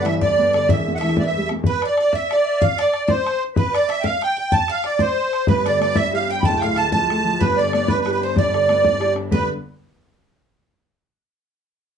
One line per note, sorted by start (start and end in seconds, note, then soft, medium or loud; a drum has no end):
0.00 0.64 G1 medium
0.00 0.65 G2 medium
0.00 0.19 E3 medium
0.00 0.05 F#5 medium
0.05 0.21 E5 medium
0.05 0.19 E5 medium
0.05 0.14 E5 loud
0.05 bodhran medium
0.20 0.38 D4 medium
0.20 0.52 D5 medium
0.20 0.51 D5 loud
0.20 0.53 D5 medium
0.20 bodhran medium
0.39 0.53 B3 medium
0.39 bodhran soft
0.53 0.68 D3 medium
0.53 0.67 D5 medium
0.53 0.70 D5 medium
0.53 bodhran medium
0.68 1.61 E1 medium
0.68 1.62 E2 medium
0.68 0.94 E5 medium
0.68 0.95 E5 medium
0.68 0.92 E5 medium
0.68 bodhran loud
0.87 1.02 B2 soft
0.87 bodhran soft
0.95 1.23 E5 loud
0.95 1.22 E5 medium
0.95 0.98 F#5 medium
0.99 1.17 E3 medium
0.99 1.18 E5 loud
0.99 bodhran medium
1.09 bodhran medium
1.17 1.34 B3 medium
1.17 1.23 D5 medium
1.17 bodhran medium
1.23 1.48 E5 medium
1.23 1.49 E5 medium
1.23 1.50 E5 loud
1.34 1.51 G3 medium
1.34 bodhran soft
1.49 1.65 B2 soft
1.49 bodhran medium
1.64 1.83 B4 medium
1.64 1.82 B4 medium
1.64 bodhran medium
1.69 1.83 B4 loud
1.82 1.94 D5 medium
1.82 1.98 D5 medium
1.82 bodhran medium
1.87 1.98 D5 medium
1.95 2.12 D5 medium
1.95 bodhran medium
2.00 2.14 D5 loud
2.00 2.13 D5 medium
2.11 2.30 E5 medium
2.11 2.32 E5 medium
2.11 bodhran medium
2.28 2.45 D5 medium
2.28 bodhran medium
2.32 2.63 D5 medium
2.32 2.60 D5 medium
2.43 2.60 E5 medium
2.60 2.79 F5 medium
2.60 2.78 F5 loud
2.60 bodhran medium
2.76 2.91 D5 medium
2.76 3.07 D5 medium
2.76 3.11 D5 medium
2.76 bodhran medium
2.92 3.09 D5 medium
2.92 bodhran medium
3.07 3.42 C5 medium
3.07 3.43 C5 loud
3.07 bodhran loud
3.26 bodhran medium
3.54 3.74 B4 medium
3.54 bodhran loud
3.58 3.76 B4 medium
3.73 3.89 D5 loud
3.73 3.88 D5 medium
3.73 3.89 D5 loud
3.73 bodhran medium
3.88 4.01 E5 medium
3.88 4.03 E5 medium
3.88 4.05 E5 loud
3.88 bodhran medium
4.00 4.21 F5 medium
4.00 4.04 G5 medium
4.04 4.23 F5 loud
4.04 4.22 F5 loud
4.04 bodhran medium
4.21 4.35 G5 medium
4.21 4.37 G5 loud
4.21 bodhran medium
4.37 4.51 G5 medium
4.37 4.53 G5 medium
4.37 4.54 G5 loud
4.52 4.71 A5 loud
4.52 4.69 A5 loud
4.52 4.71 A5 loud
4.52 bodhran medium
4.68 4.86 F5 medium
4.68 4.85 F5 loud
4.68 bodhran medium
4.84 5.00 D5 medium
4.84 5.01 D5 medium
4.84 5.02 D5 medium
4.84 bodhran medium
4.99 5.50 C5 medium
4.99 5.45 C5 medium
4.99 5.46 C5 loud
4.99 bodhran medium
5.33 bodhran soft
5.47 6.40 G1 medium
5.47 6.42 G2 medium
5.47 5.67 B4 medium
5.47 5.66 B4 medium
5.47 5.67 B4 medium
5.47 bodhran medium
5.65 5.81 D3 medium
5.65 5.79 D5 medium
5.65 5.81 D5 medium
5.65 5.80 D5 loud
5.65 bodhran medium
5.80 5.96 B3 medium
5.80 5.97 D5 medium
5.80 5.96 D5 medium
5.80 bodhran medium
5.96 6.14 D4 soft
5.96 6.13 E5 loud
5.96 6.30 E5 medium
5.96 6.14 E5 medium
5.96 bodhran loud
6.13 6.29 G4 medium
6.13 6.30 F5 loud
6.13 6.30 F5 medium
6.28 6.44 D4 soft
6.28 6.45 G5 medium
6.28 6.42 G5 loud
6.28 6.45 G5 medium
6.40 7.36 D1 medium
6.40 7.37 D2 medium
6.40 6.45 B5 medium
6.40 bodhran medium
6.45 6.63 A5 loud
6.45 6.58 A5 loud
6.45 6.62 A5 loud
6.57 6.77 F5 medium
6.57 6.62 G5 medium
6.62 6.77 A2 medium
6.62 6.78 F5 medium
6.62 6.77 F5 medium
6.62 bodhran medium
6.76 6.92 D3 medium
6.76 6.90 A5 loud
6.76 6.91 A5 medium
6.76 6.89 A5 medium
6.76 bodhran medium
6.91 7.10 F3 medium
6.91 7.41 A5 medium
6.91 7.42 A5 loud
6.91 7.42 A5 medium
6.91 bodhran medium
7.10 7.25 A3 medium
7.10 bodhran medium
7.25 7.40 F3 medium
7.39 8.33 G1 medium
7.39 8.34 G2 medium
7.39 7.58 B4 medium
7.39 7.59 B4 medium
7.39 7.57 B4 medium
7.39 bodhran medium
7.57 7.73 D3 medium
7.57 7.72 D5 loud
7.57 7.71 D5 medium
7.57 7.73 D5 medium
7.73 7.89 B3 medium
7.73 7.89 D5 medium
7.73 7.90 D5 medium
7.73 bodhran medium
7.87 8.06 D4 medium
7.87 7.99 B4 medium
7.87 8.00 B4 loud
7.87 8.01 B4 medium
7.87 bodhran medium
8.01 8.11 B4 loud
8.06 8.21 G4 medium
8.06 bodhran medium
8.10 8.21 B4 medium
8.10 8.22 B4 medium
8.21 8.36 D4 medium
8.21 8.37 C5 medium
8.35 9.28 G1 medium
8.35 9.29 G2 medium
8.35 9.14 D5 medium
8.35 bodhran medium
8.53 8.68 D3 medium
8.53 bodhran medium
8.69 8.84 B3 medium
8.69 bodhran medium
8.83 9.01 D4 medium
8.83 bodhran medium
9.00 9.16 G4 medium
9.00 bodhran medium
9.15 9.31 D4 medium
9.15 bodhran soft
9.31 9.48 G2 medium
9.31 9.48 D3 medium
9.31 9.49 G3 medium
9.31 9.49 B3 medium
9.31 9.49 D4 medium
9.31 9.48 B4 medium
9.31 9.49 B4 medium
9.31 bodhran medium